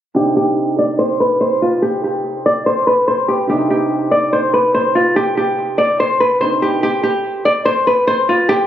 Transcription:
0.15 grand piano C3 C4 D4 D#4, nylon-string guitar G4
0.37 nylon-string guitar G4
0.79 nylon-string guitar D5
0.99 nylon-string guitar C5
1.20 nylon-string guitar B4
1.41 nylon-string guitar C5
1.62 nylon-string guitar F4
1.82 nylon-string guitar G4
2.04 nylon-string guitar G4
2.46 nylon-string guitar D5
2.66 nylon-string guitar C5
2.87 nylon-string guitar B4
3.08 nylon-string guitar C5
3.28 nylon-string guitar G4
3.47 grand piano C3 C4 D4 D#4, nylon-string guitar G4
3.70 nylon-string guitar G4
4.11 nylon-string guitar D5
4.33 nylon-string guitar C5
4.54 nylon-string guitar B4
4.74 nylon-string guitar C5
4.95 nylon-string guitar F4
5.16 nylon-string guitar G4
5.37 nylon-string guitar G4
5.78 nylon-string guitar D5
6.00 nylon-string guitar C5
6.20 nylon-string guitar B4
6.40 grand piano C3 C4 D4 D#4, nylon-string guitar C5
6.62 nylon-string guitar G4
6.83 nylon-string guitar G4
7.03 nylon-string guitar G4
7.45 nylon-string guitar D5
7.65 nylon-string guitar C5
7.87 nylon-string guitar B4
8.07 nylon-string guitar C5
8.29 nylon-string guitar F4
8.49 nylon-string guitar G4

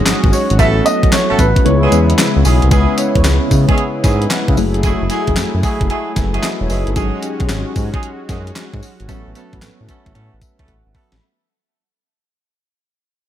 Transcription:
Already playing: synth keys F#3 G#3 C#4 D#4 G#4, analog synth pad G#3 C#4 F#4, grand piano D#5
0.06 analog synth bass G#1, snare, clap, closed hi-hat, tambourine
0.24 analog synth bass G#1, kick
0.33 grand piano C#5, open hi-hat, tambourine
0.50 analog synth bass G#1, closed hi-hat
0.58 analog synth bass A1, synth keys F#3 B3 C#4 E4 A4, horn section A3 B3 C#4 F#4 A4, analog synth pad A3, grand piano E5, kick, closed hi-hat, tambourine
0.86 grand piano D#5, closed hi-hat, tambourine
1.03 analog synth bass A1, kick, closed hi-hat
1.12 grand piano C#5, snare, clap, closed hi-hat, tambourine
1.29 analog synth bass A1, horn section A3 B3 C#4 F#4 A4
1.39 analog synth bass A1, grand piano B4, kick, closed hi-hat, tambourine
1.56 kick, closed hi-hat
1.65 analog synth bass C#2, analog synth pad C#3 G#3 B3 E4, synth keys G#3 B3 C#4 E4 B4, grand piano C#5, closed hi-hat
1.82 horn section G#3 B3 C#4 E4 G#4
1.91 analog synth bass E2, synth keys G#3 B3 C#4 E4 B4, closed hi-hat, tambourine
2.10 closed hi-hat
2.18 snare, clap, closed hi-hat, tambourine
2.36 analog synth bass C#2
2.44 analog synth bass B1, horn section G#3 B3 C#4 E4 G#4, open hi-hat, tambourine
2.62 analog synth bass C2, closed hi-hat
2.71 analog synth bass C#2, analog synth pad C#3 G#3 B3 E4, synth keys G#3 C#4 E4 B4, horn section G#3 B3 C#4 E4 G#4, kick, closed hi-hat, tambourine
2.97 synth keys G#3 C#4 E4 C#5, closed hi-hat, tambourine
3.15 analog synth bass E2, kick, closed hi-hat
3.24 analog synth bass C#2, snare, clap, closed hi-hat, tambourine
3.51 analog synth bass C#3, kick, open hi-hat, tambourine
3.68 horn section G#3 B3 C#4 E4 G#4, kick, closed hi-hat
3.78 closed hi-hat
4.04 analog synth bass G#2, horn section G#3 B3 C#4 E4 G#4, synth keys D#5 B5, kick, snare, closed hi-hat, tambourine
4.22 synth keys B4 G#5, closed hi-hat
4.30 synth keys F#5, snare, clap, closed hi-hat, tambourine
4.48 analog synth bass C#3, synth keys G#4 E5, kick
4.57 analog synth bass F#1, synth keys F#3 A3 E4 G#4, analog synth pad F#3 A3 G#4, open hi-hat, tambourine
4.74 closed hi-hat
4.83 horn section G#3 A3 E4 F#4 G#4, kick, closed hi-hat, tambourine
5.02 analog synth bass F#1
5.10 synth keys F#3 A3 E4 G#4, horn section G#3 A3 E4 F#4 G#4, closed hi-hat, tambourine
5.27 analog synth bass F#1, kick, closed hi-hat
5.36 analog synth bass F#2, snare, clap, closed hi-hat, tambourine
5.54 analog synth bass F#2
5.63 horn section G#3 A3 E4 F#4 G#4, kick, open hi-hat, tambourine
5.81 analog synth bass F#1, kick, closed hi-hat
5.89 horn section G#3 A3 E4 F#4 G#4, closed hi-hat
6.16 analog synth bass F#1, synth keys B4 G#5, kick, snare, closed hi-hat, tambourine
6.33 horn section G#3 A3 E4 F#4 G#4, synth keys G#4 E5, closed hi-hat
6.43 synth keys F#4 D#5, snare, clap, closed hi-hat, tambourine
6.61 analog synth bass E1, synth keys E4 C#5
6.69 analog synth bass F#1, horn section G#3 A3 E4 F#4 G#4, synth keys D#4 B4, open hi-hat, tambourine
6.87 analog synth bass G1, synth keys C#4 A4, closed hi-hat
6.95 analog synth bass G#1, synth keys F#3 C#4 D#4 G#4, horn section G#3 C#4 D#4 F#4 G#4, analog synth pad G#3 C#4 F#4, kick, closed hi-hat, tambourine
7.23 synth keys F#3 C#4 D#4 G4, closed hi-hat, tambourine
7.30 synth keys G#4
7.40 analog synth bass B1, kick, closed hi-hat
7.49 analog synth bass G#1, snare, clap, closed hi-hat, tambourine
7.76 analog synth bass G#2, kick, open hi-hat, tambourine
7.93 horn section G#3 C#4 D#4 F#4 G#4, kick, closed hi-hat
8.03 closed hi-hat
8.28 analog synth bass F#2, horn section G#3 C#4 D#4 F#4 G#4, kick, snare, closed hi-hat, tambourine
8.47 closed hi-hat
8.56 snare, clap, closed hi-hat, tambourine
8.74 analog synth bass G#2, kick
8.83 open hi-hat, tambourine
9.00 analog synth bass G#1, closed hi-hat
9.08 analog synth bass A1, synth keys F#3 B3 C#4 A4, horn section A3 B3 C#4 F#4 A4, analog synth pad A3, kick, closed hi-hat, tambourine
9.27 analog synth bass A1
9.35 synth keys F#3 B3 C#4 B4, horn section A3 B3 C#4 F#4 A4, closed hi-hat, tambourine
9.53 analog synth bass A1, kick, closed hi-hat
9.62 analog synth bass A2, snare, clap, closed hi-hat, tambourine
9.81 analog synth bass A2
9.88 horn section A3 B3 C#4 F#4 A4, kick, closed hi-hat, tambourine
10.06 analog synth bass A1, kick, closed hi-hat
10.14 analog synth bass A2, horn section A3 B3 C#4 F#4 A4, closed hi-hat
10.34 analog synth bass A1
10.42 synth keys E5, kick, closed hi-hat, tambourine
10.59 analog synth bass C#2, horn section A3 B3 C#4 F#4 A4, kick, closed hi-hat
10.68 analog synth bass A1, synth keys F#5, kick, closed hi-hat
10.86 analog synth bass G#1
10.94 horn section A3 B3 C#4 F#4 A4, synth keys B5, kick, open hi-hat
11.12 analog synth bass A1, snare, closed hi-hat

